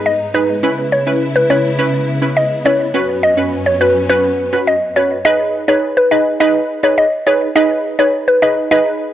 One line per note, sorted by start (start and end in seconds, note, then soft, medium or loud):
0.00 0.59 G#2 medium
0.00 2.90 G#3 medium
0.00 0.59 B3 medium
0.00 0.13 D#4 medium
0.00 0.59 D#4 medium
0.00 0.13 G#4 medium
0.00 0.13 B4 medium
0.06 0.17 D#5 medium
0.34 0.56 D#4 medium
0.34 0.56 G#4 medium
0.34 0.46 B4 medium
0.34 0.56 B4 medium
0.63 2.92 C#3 medium
0.63 5.21 B3 medium
0.63 1.03 C#4 medium
0.63 2.92 E4 medium
0.63 1.03 E4 medium
0.63 1.03 B4 loud
0.92 1.04 C#5 medium
1.07 1.46 C#4 medium
1.07 1.47 E4 medium
1.07 1.47 B4 medium
1.36 1.47 B4 medium
1.50 1.76 C#4 medium
1.50 1.77 E4 medium
1.50 1.77 B4 medium
1.50 1.62 C#5 medium
1.79 2.19 C#4 medium
1.79 2.19 E4 medium
1.79 2.19 B4 loud
2.22 2.44 C#4 medium
2.22 2.44 E4 medium
2.22 2.44 B4 medium
2.37 2.48 D#5 medium
2.65 2.87 C#4 medium
2.65 2.87 E4 medium
2.65 2.87 B4 medium
2.65 2.77 C#5 medium
2.94 5.23 F#2 medium
2.94 5.23 F#3 medium
2.94 3.34 C#4 medium
2.94 5.23 C#4 medium
2.94 3.34 F#4 medium
2.94 3.34 B4 loud
3.23 3.35 D#5 medium
3.37 3.77 C#4 medium
3.37 3.77 F#4 medium
3.37 3.77 B4 medium
3.66 3.78 C#5 medium
3.81 4.07 C#4 medium
3.81 4.07 F#4 medium
3.81 3.92 B4 medium
3.81 4.08 B4 medium
4.09 4.49 C#4 medium
4.09 4.49 F#4 medium
4.09 4.50 B4 loud
4.53 4.74 C#4 medium
4.53 4.75 F#4 medium
4.53 4.75 B4 medium
4.67 4.79 D#5 medium
4.96 5.18 C#4 medium
4.96 5.18 F#4 medium
4.96 5.18 B4 medium
4.96 5.08 C#5 medium
5.25 5.65 D#4 loud
5.25 5.65 G#4 medium
5.25 5.65 B4 loud
5.25 5.48 D#5 loud
5.68 6.08 D#4 medium
5.68 6.08 G#4 medium
5.68 6.08 B4 medium
5.68 5.80 C#5 medium
5.97 6.09 B4 medium
6.11 6.38 D#4 medium
6.11 6.38 G#4 medium
6.11 6.38 B4 medium
6.11 6.23 D#5 medium
6.40 6.80 D#4 loud
6.40 6.80 G#4 medium
6.40 6.80 B4 loud
6.40 6.52 D#5 medium
6.83 7.05 D#4 medium
6.83 7.05 G#4 medium
6.83 7.05 B4 medium
6.83 6.95 C#5 medium
6.98 7.09 D#5 medium
7.26 7.48 D#4 medium
7.26 7.49 G#4 medium
7.26 7.49 B4 medium
7.26 7.38 C#5 medium
7.55 7.95 D#4 loud
7.55 7.96 G#4 medium
7.55 7.96 B4 loud
7.55 7.79 D#5 loud
7.99 8.39 D#4 medium
7.99 8.39 G#4 medium
7.99 8.39 B4 medium
7.99 8.10 C#5 medium
8.28 8.39 B4 medium
8.42 8.69 D#4 medium
8.42 8.69 G#4 medium
8.42 8.69 B4 medium
8.42 8.54 D#5 medium
8.71 9.11 D#4 loud
8.71 9.11 G#4 medium
8.71 9.11 B4 loud
8.71 8.83 D#5 medium